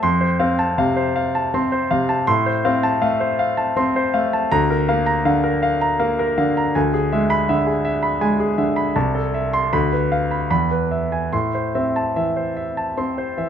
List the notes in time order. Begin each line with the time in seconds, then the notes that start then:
0.03 F2 C6
0.21 C5
0.40 C4 F5
0.59 A5
0.78 C3 F5
0.96 C5
1.16 F5
1.35 A5
1.54 C4 C6
1.72 C5
1.91 C3 F5
2.09 A5
2.27 A2 C6
2.46 C5
2.65 C4 F5
2.83 A5
3.02 A3 F5
3.20 C5
3.39 F5
3.57 A5
3.77 C4 C6
3.96 C5
4.14 A3 F5
4.33 A5
4.52 D2 A#5
4.70 A#4
4.89 A#3 F5
5.06 A#5
5.25 D3 F5
5.44 A#4
5.63 F5
5.81 A#5
5.99 A#3 F5
6.19 A#4
6.38 D3 F5
6.57 A#5
6.75 D2 G#5
6.94 G#4
7.12 G#3 E5
7.30 B5
7.49 D3 E5
7.66 G#4
7.85 E5
8.03 B5
8.21 G#3 G#5
8.40 G#4
8.58 D3 E5
8.76 B5
8.96 C2 A5
9.15 A4
9.34 E5
9.53 C6
9.73 D2 B5
9.92 B4
10.12 F5
10.31 B5
10.51 E2 B5
10.71 B4
10.91 E5
11.12 G#5
11.33 A2 C6
11.55 C5
11.75 C4 E5
11.96 A5
12.16 E3 E5
12.36 C5
12.57 E5
12.77 A5
12.97 C4 C6
13.18 C5
13.37 E3 E5